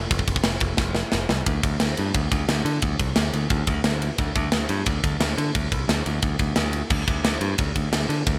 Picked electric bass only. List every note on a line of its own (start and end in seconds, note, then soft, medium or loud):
0.11 0.23 F1 medium
0.28 0.40 F1 medium
0.44 0.56 F1 medium
0.61 0.73 F1 medium
0.78 1.02 F1 loud
1.13 1.25 F1 medium
1.30 1.42 C2 medium
1.47 1.60 D2 medium
1.63 1.76 D2 medium
1.81 1.94 D2 medium
1.99 2.11 G2 medium
2.15 2.27 D2 loud
2.32 2.44 D2 medium
2.48 2.61 D2 medium
2.65 2.78 D3 medium
2.83 2.95 D2 medium
3.00 3.12 C2 medium
3.16 3.29 D2 medium
3.33 3.46 D2 medium
3.50 3.63 D2 loud
3.68 3.80 D2 loud
3.84 4.09 D2 medium
4.19 4.31 D2 loud
4.36 4.48 D2 loud
4.53 4.65 D2 medium
4.69 4.82 G2 medium
4.87 4.99 D2 loud
5.04 5.16 D2 medium
5.20 5.33 D2 medium
5.38 5.50 D3 medium
5.55 5.67 D2 medium
5.72 5.84 C2 medium
5.88 6.01 D2 medium
6.06 6.19 D2 medium
6.23 6.35 D2 loud
6.39 6.52 D2 medium
6.57 6.82 D2 medium
6.90 7.03 D2 medium
7.08 7.20 D2 medium
7.24 7.36 D2 medium
7.41 7.54 G2 medium
7.59 7.71 D2 loud
7.75 7.88 D2 medium
7.92 8.05 D2 medium
8.09 8.22 D3 medium
8.27 8.39 D2 loud